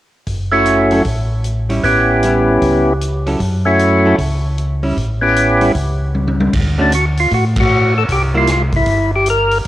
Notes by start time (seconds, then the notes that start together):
0.26 F#1, kick, open hi-hat
0.51 A3 C#4 E4 F#4
0.65 closed hi-hat
0.91 F#3 C#4 E4 A4, open hi-hat
1.05 A1, kick, open hi-hat
1.44 closed hi-hat
1.69 G3 C#4 E4, open hi-hat
1.84 A1 B3 C#4 E4 G4, kick, open hi-hat
2.23 G3 C#4 E4, closed hi-hat
2.62 C#2, kick, open hi-hat
3.01 closed hi-hat
3.26 F#3 C#4 E4 A4, open hi-hat
3.40 F#2, kick, open hi-hat
3.65 A3 C#4 E4 F#4
3.79 closed hi-hat
4.05 F#3 C#4 E4 A4
4.18 C#2, kick, open hi-hat
4.58 closed hi-hat
4.83 G3 C#4 E4, open hi-hat
4.97 A1, kick, open hi-hat
5.21 B3 C#4 E4 G4
5.36 closed hi-hat
5.61 G3 C#4 E4, open hi-hat
5.75 C#2, kick, open hi-hat
6.15 high tom
6.28 high tom
6.40 high tom
6.53 D2, kick, ride
6.78 D3 A3 C#4 D4 F#4
6.92 F#4, closed hi-hat
7.17 F4, open hi-hat
7.31 A2 F#4, kick, open hi-hat
7.56 F#4, kick, ride
7.98 A4
8.09 C2 G4, kick, open hi-hat
8.34 G3 A#3 E4 F4
8.47 snare, closed hi-hat
8.52 F4
8.72 kick, open hi-hat
8.77 E4
8.86 G1, kick, open hi-hat
9.16 G4
9.26 closed hi-hat
9.30 A#4
9.51 open hi-hat